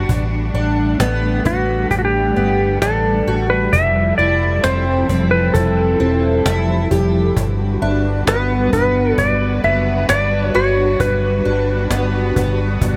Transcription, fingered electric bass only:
0.09 0.49 A1 medium
0.54 0.94 A1 medium
1.00 1.40 A1 medium
1.46 1.86 A1 medium
1.91 2.31 A1 medium
2.37 2.76 G1 medium
2.82 3.22 A1 medium
3.27 3.67 A1 medium
3.73 4.13 F1 medium
4.18 4.58 F1 medium
4.64 5.04 F1 medium
5.09 5.49 F1 medium
5.55 5.95 F1 medium
6.00 6.40 E1 medium
6.46 6.86 F1 medium
6.91 7.31 F1 medium
7.37 7.76 G1 medium
7.82 8.22 G1 medium
8.27 8.67 G1 medium
8.73 9.13 G1 medium
9.18 9.58 G1 medium
9.64 10.04 F#1 medium
10.09 10.49 G1 medium
10.55 10.95 G1 medium
11.00 11.40 G1 medium
11.46 11.86 G1 medium
11.91 12.31 G1 medium
12.36 12.76 G1 medium
12.81 12.96 G1 medium

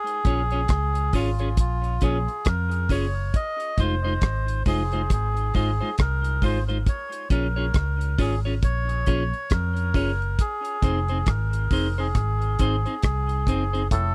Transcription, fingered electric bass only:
0.25 0.66 A#1 medium
0.70 1.10 C#2 medium
1.14 1.54 G#1 medium
1.58 1.98 A#1 medium
2.03 2.26 A#1 loud
2.47 2.87 F2 medium
2.90 3.31 F#1 medium
3.78 4.19 F1 loud
4.22 4.63 G#1 medium
4.67 5.07 F1 medium
5.11 5.51 G#1 medium
5.55 5.79 G#1 medium
6.00 6.39 C2 medium
6.43 6.83 G#1 medium
7.31 7.71 A#1 loud
7.75 8.15 C#2 medium
8.19 8.59 G#1 medium
8.63 9.04 A#1 medium
9.08 9.31 A#1 loud
9.51 9.92 F2 medium
9.95 10.35 F#1 medium
10.83 11.23 F1 loud
11.27 11.68 G#1 medium
11.71 12.12 F1 medium
12.16 12.56 G#1 medium
12.60 12.84 G#1 medium
13.04 13.44 C2 medium
13.48 13.88 F#1 medium
13.92 14.15 F1 loud

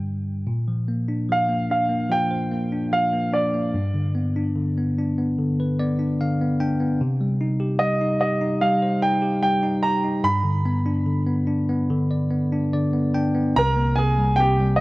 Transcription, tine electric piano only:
0.00 0.42 G2 medium
0.00 0.43 D3 soft
0.00 0.44 G3 soft
0.47 3.71 A#2 soft
0.68 1.28 F3 soft
0.88 1.48 A#3 soft
1.08 1.69 D4 soft
1.29 2.08 F3 soft
1.49 1.88 A#3 soft
1.70 2.71 D4 soft
1.89 2.51 A#3 soft
2.10 2.91 F3 medium
2.31 3.70 C5 soft
2.52 3.12 A#3 soft
2.72 3.32 D4 soft
2.92 3.72 F3 soft
3.13 3.53 A#3 soft
3.33 3.73 D4 soft
3.54 3.74 A#3 soft
3.74 6.96 G2 medium
3.94 4.55 D3 soft
4.15 4.77 B3 soft
4.36 4.98 D4 medium
4.56 5.37 D3 soft
4.78 5.17 B3 soft
4.99 5.98 D4 soft
5.18 5.79 B3 medium
5.38 6.20 D3 medium
5.60 6.97 B4 soft
5.79 6.40 B3 soft
5.79 6.17 D5 medium
5.99 6.59 D4 soft
6.21 6.99 D3 soft
6.21 6.58 F5 medium
6.41 6.79 B3 medium
6.60 7.00 D4 medium
6.60 6.98 G5 medium
6.80 7.00 B3 soft
7.01 10.22 C3 medium
7.21 7.80 G3 soft
7.41 8.00 D#4 soft
7.60 8.21 G4 medium
7.81 8.61 G3 soft
8.01 8.40 D#4 soft
8.22 9.21 G4 medium
8.41 9.01 D#4 medium
8.62 9.42 G3 medium
8.82 10.21 C5 soft
9.02 9.62 D#4 medium
9.22 9.83 G4 medium
9.43 10.22 G3 medium
9.63 10.03 D#4 medium
9.84 10.24 G4 medium
10.04 10.24 D#4 soft
10.24 13.51 G2 medium
10.44 11.05 D3 medium
10.66 11.26 B3 medium
10.86 11.46 D4 medium
11.06 11.88 D3 medium
11.27 11.68 B3 soft
11.47 12.51 D4 medium
11.69 12.29 B3 medium
11.90 12.72 D3 medium
12.11 12.72 D5 soft
12.31 12.92 B3 medium
12.52 13.13 D4 medium
12.73 13.54 D3 medium
12.73 13.12 D5 medium
12.93 13.33 B3 medium
13.14 13.55 D4 medium
13.14 13.53 G5 medium
13.34 13.55 B3 medium
13.56 14.81 C2 medium
13.56 13.95 C3 medium
13.76 14.81 A#3 soft
13.97 14.37 C3 soft
14.18 14.59 G3 medium
14.39 14.79 C3 medium
14.60 14.81 G3 medium

